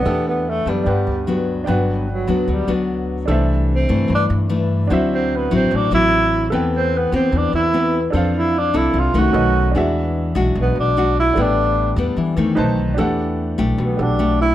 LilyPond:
<<
  \new Staff \with { instrumentName = "Grand piano" } { \time 4/4 \key g \major \tempo 4 = 149 <d' g' a' fis''>2 <d' b' fis'' g''>2 | <d' b' fis'' g''>1 | <d' a' c'' e''>1 | <d' fis' c'' e''>1 |
<a' b' g''>1 | <d' a' c'' f''>2. <cis' a' b' dis''>4 | <d' fis' gis' e''>1 | <d' a' b' g''>2. <dis' b' c'' a''>4 |
<d' g' a' fis''>2~ <d' g' a' fis''>8 <d' g' a' fis''>4. | }
  \new Staff \with { instrumentName = "Tenor saxophone" } { \time 4/4 \key g \major b8 b8 a8 g2 r8 | r4 fis4 g8 r4. | r4 c'4 d'8 r4. | r8 c'8 b8 c'8 d'8 e'4. |
r8 c'8 b8 c'8 d'8 e'4. | r8 e'8 d'8 e'8 f'8 fis'4. | r2 b8 d'4 e'8 | d'4. r2 r8 |
r2 b8 d'4 e'8 | }
  \new Staff \with { instrumentName = "Nylon-string guitar" } { \time 4/4 \key g \major << { <a d' g'>4 r8 <b d'>4. <fis b d'>4 | <fis b d'>4 r8 <fis b d'>4 <fis b d'>4. | <e a d'>4. <e a d'>4. <e a d'>4 | <fis c' e'>4. <fis c' e'>4 <fis c' e'>4. |
<b c' g'>4 r8 <b c' g'>4. <b c' g'>8 r8 | <c' d' a'>4. <c' d' a'>4 <ees a cis'>4. | <gis d' fis'>4. <gis d' fis'>4. <gis d' fis'>8 r8 | <g b d'>4. <g b d'>4 <ees a c'>4. |
<a d' g'>4. <a d' g'>4. <a d' g'>4 | } \\ { e2 g,2 | g,2 d2 | c2 g,2 | d2 a,2 |
e2 e2 | f2 c4 r4 | e2 b,2 | a,2 e4 r4 |
e2 b,2 | } >> }
  \new Staff \with { instrumentName = "Upright bass" } { \clef bass \time 4/4 \key g \major e,4. fis,8 g,8 d,4. | g,,4. d,8 d,8 d,4. | c,4. g,8 g,8 g,4. | d,4. a,,8 a,,8 a,,4. |
e,4. e,8 e,8 e,4. | f,4. c,8 c,8 c,8 b,,4 | e,4. b,,8 b,,8 b,,4. | a,,4. e,8 e,8 e,8 b,,4 |
e,4. b,,8 b,,8 b,,4. | }
>>